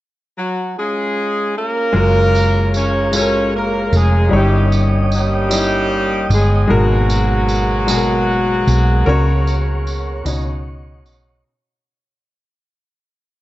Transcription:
0.38 horn section F#3 F#4
0.78 horn section G#3 C#4 F4 G#4
1.57 horn section A#3 C#4 F4 A#4
1.93 fingered electric bass F#1, grand piano G#3 F4 F#4 A#4, tonewheel organ G#4 C#5 F5 A#5
2.35 tambourine
2.74 horn section C#4 C#5, tambourine
3.12 grand piano G#3 F4 F#4 A4, tambourine
3.16 horn section C#4 C#5
3.22 grand piano A#4
3.56 horn section A#3 A#4
3.92 fingered electric bass F1, horn section G#3 G#4, tambourine
4.29 fingered electric bass G1, grand piano G2 G3 D#4 E4, tonewheel organ C#5 D#5 G5
4.33 horn section G3 A#3 C#4 G4, grand piano C#5, tonewheel organ D#6
4.72 tambourine
5.12 horn section G3 A#3 C#4 G4, tambourine
5.50 grand piano G3 D#4 E4 D#5, tambourine
6.30 fingered electric bass G1, horn section G#3 G#4, tambourine
6.67 fingered electric bass G#1, grand piano G#2 B2 G#3 F#4 A#4, tonewheel organ G#4 F#5 G#5
6.73 horn section F#3 A#3 B3 F#4
7.10 tambourine
7.49 tambourine
7.87 grand piano B2 G#3 F#4 G#4, tambourine
7.96 grand piano A#4
8.67 fingered electric bass B1, tambourine
9.06 fingered electric bass C#2, grand piano C#3 C#4 F#4 A#4 C#5, tonewheel organ C#5 C#6
9.47 tambourine
9.87 tambourine
10.25 fingered electric bass C#2, grand piano B2 C#3 D#4 F#4 C#5, tonewheel organ C#5 D#5 C#6, tambourine
11.05 fingered electric bass B1, tambourine

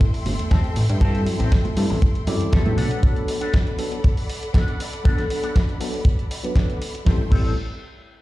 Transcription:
Already playing: string section A4 E5 G5 C6
0.01 muted clean electric guitar stroke, kick, closed hi-hat
0.14 open hi-hat
0.26 analog synth bass G1, open hi-hat, high conga
0.39 analog synth bass E2, closed hi-hat
0.50 analog synth bass E2, clean electric guitar C4 G4 A4, kick, snare, closed hi-hat
0.64 closed hi-hat
0.76 analog synth bass A1, open hi-hat
0.89 analog synth bass G2, closed hi-hat
1.00 tine electric piano G3 C4 E4 A4, clean electric guitar C4 G4 A4, kick, closed hi-hat
1.15 closed hi-hat
1.26 analog synth bass F#2, open hi-hat
1.39 analog synth bass A1, clean electric guitar C4 G4 A4, closed hi-hat
1.52 kick, snare, closed hi-hat
1.64 muted clean electric guitar stroke, closed hi-hat, high conga
1.76 analog synth bass G2, tine electric piano G3 C4 E4 A4, muted clean electric guitar stroke, open hi-hat
1.89 analog synth bass A1, muted clean electric guitar stroke, open hi-hat
2.01 muted clean electric guitar stroke, kick, closed hi-hat
2.15 closed hi-hat
2.27 analog synth bass F#2, tine electric piano G3 C4 E4 A4, clean electric guitar D5, open hi-hat
2.40 analog synth bass E2, closed hi-hat
2.51 analog synth bass E2, clean electric guitar C4 G4 A4 E5, kick, snare, closed hi-hat
2.65 analog synth bass A2, tine electric piano F#3 B3 D4 A4, closed hi-hat, high conga, low conga
2.77 analog synth bass B1, clean electric guitar B3 D4 A4 F#5, string section A4 D5 F#5 B5, open hi-hat
2.91 closed hi-hat
3.02 tine electric piano F#3 B3 D4 A4, kick, closed hi-hat
3.16 closed hi-hat
3.28 open hi-hat
3.41 clean electric guitar B3 D4 A4, closed hi-hat
3.53 kick, snare, closed hi-hat
3.66 muted clean electric guitar stroke, closed hi-hat
3.78 tine electric piano F#3 B3 D4 A4, muted clean electric guitar stroke, open hi-hat
3.91 muted clean electric guitar stroke, closed hi-hat
4.03 muted clean electric guitar stroke, kick, closed hi-hat
4.17 open hi-hat
4.29 open hi-hat
4.43 closed hi-hat
4.53 clean electric guitar B3 D4 A4, kick, snare, closed hi-hat
4.68 closed hi-hat
4.80 open hi-hat
4.93 closed hi-hat
5.04 tine electric piano F#3 B3 D4 A4, clean electric guitar B3 D4 A4, kick, closed hi-hat
5.18 snare, closed hi-hat
5.30 open hi-hat
5.43 clean electric guitar B3 D4 A4, closed hi-hat
5.56 kick, snare, closed hi-hat
5.68 muted clean electric guitar stroke, closed hi-hat
5.80 tine electric piano F#3 B3 D4 A4, muted clean electric guitar stroke, open hi-hat
5.93 muted clean electric guitar stroke, open hi-hat
6.05 muted clean electric guitar stroke, kick, closed hi-hat
6.19 closed hi-hat
6.31 open hi-hat
6.44 tine electric piano F#3 B3 D4 B4, closed hi-hat
6.55 clean electric guitar B3 D4 A4, kick, snare, closed hi-hat
6.70 closed hi-hat
6.82 open hi-hat
6.95 closed hi-hat
7.05 analog synth bass A1, tine electric piano G3 C4 E4 A4, string section A3 A4 G5 C6, clean electric guitar C4 G4 A4, kick, snare
7.31 analog synth bass A1, tine electric piano G3 C4 E4 A4, clean electric guitar C4 G4 A4, kick, crash

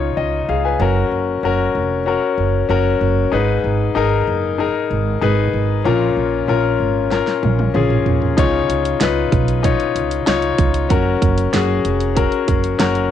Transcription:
Already playing: upright bass C#2, grand piano C#3 D#4 F4 C#5
0.17 upright bass C#2, grand piano D#5
0.49 upright bass C#2, grand piano G#4 F5
0.65 grand piano B4 G#5
0.80 upright bass F#1, grand piano C#4 F#4 A#4
1.11 upright bass F#1
1.43 upright bass F#1, grand piano C#4 F#4 A#4
1.75 upright bass F1
2.06 grand piano C#4 F#4 A#4
2.38 upright bass F#1
2.69 upright bass F#1, grand piano C#4 F#4 A#4
3.01 upright bass F#1
3.32 upright bass G#1, grand piano G#2 D#4 G#4 B4
3.64 upright bass G#1
3.95 upright bass G#1, grand piano D#4 G#4 A#4
4.27 upright bass F#1
4.58 grand piano D#4 G#4 A#4
4.90 upright bass G#1
5.21 upright bass G#1, grand piano D#4 G#4 B4
5.54 upright bass G#1
5.84 upright bass A#1, grand piano A#2 C#4 F4 A#4
6.17 upright bass A#1
6.48 upright bass A#1, grand piano C#4 F4 A#4
6.80 upright bass G#1
7.10 grand piano C#4 F4 A#4, snare
7.27 snare
7.43 upright bass A#1, high tom
7.59 high tom
7.74 upright bass A#1, grand piano C#4 F4 G#4, mid tom
7.90 mid tom
8.06 upright bass A#1, floor tom
8.22 floor tom
8.37 upright bass C#2, grand piano C#3 D#4 F4 C#5, kick, closed hi-hat
8.69 upright bass C#2, closed hi-hat
8.85 closed hi-hat
9.00 upright bass C#2, grand piano D#4 F4 B4, snare, closed hi-hat
9.32 upright bass B1, kick, closed hi-hat
9.48 closed hi-hat
9.63 grand piano D#4 F4 C#5, kick, closed hi-hat
9.80 closed hi-hat
9.95 upright bass C#2, closed hi-hat
10.11 closed hi-hat
10.26 upright bass C#2, grand piano D#4 F4 C#5, snare, closed hi-hat
10.42 closed hi-hat
10.58 upright bass C#2, kick, closed hi-hat
10.74 closed hi-hat
10.89 upright bass F#1, grand piano C#4 F#4 A#4, kick, closed hi-hat
11.22 upright bass F#1, kick, closed hi-hat
11.38 closed hi-hat
11.52 upright bass F#1, grand piano C#4 F#4 G#4, snare, closed hi-hat
11.85 upright bass F1, closed hi-hat
12.00 closed hi-hat
12.15 grand piano C#4 F#4 A#4, kick, closed hi-hat
12.32 closed hi-hat
12.48 upright bass F#1, kick, closed hi-hat
12.64 closed hi-hat
12.78 upright bass F#1, grand piano C#4 F#4 A#4, snare, closed hi-hat
12.95 closed hi-hat

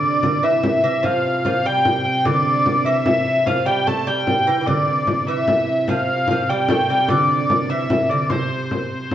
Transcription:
Already playing: viola da gamba C3, lute D3, hurdy-gurdy D5
0.23 lute D3, frame drum
0.43 lute E3, hurdy-gurdy E5
0.63 frame drum
0.84 lute E3, frame drum
1.03 lute F3, hurdy-gurdy F5, frame drum
1.24 frame drum
1.45 lute F3, frame drum
1.65 lute G3, hurdy-gurdy G5
1.85 frame drum
2.05 hurdy-gurdy G5, frame drum
2.25 lute D3, hurdy-gurdy D5, frame drum
2.46 frame drum
2.66 frame drum
2.85 lute E3, hurdy-gurdy E5
3.06 frame drum
3.26 frame drum
3.46 lute F3, hurdy-gurdy F5, frame drum
3.66 lute G3, hurdy-gurdy G5, frame drum
3.87 lute A3, hurdy-gurdy A5, frame drum
4.07 lute G3, hurdy-gurdy G5, frame drum
4.27 frame drum
4.47 lute E3
4.61 lute E3
4.66 viola da gamba C3, lute D3, hurdy-gurdy D5, frame drum
4.87 frame drum
5.07 frame drum
5.27 lute E3, hurdy-gurdy E5
5.48 frame drum
5.68 frame drum
5.88 lute F3, hurdy-gurdy F5, frame drum
6.08 frame drum
6.28 lute F3, frame drum
6.49 lute G3, hurdy-gurdy G5
6.68 lute A3, frame drum
6.89 lute G3, hurdy-gurdy G5, frame drum
7.08 lute D3, hurdy-gurdy D5, frame drum
7.29 frame drum
7.50 frame drum
7.70 lute E3, hurdy-gurdy E5
7.90 frame drum
8.10 lute D3, hurdy-gurdy D5, frame drum
8.29 lute C3, hurdy-gurdy C5, frame drum
8.71 frame drum
8.92 frame drum
9.11 frame drum

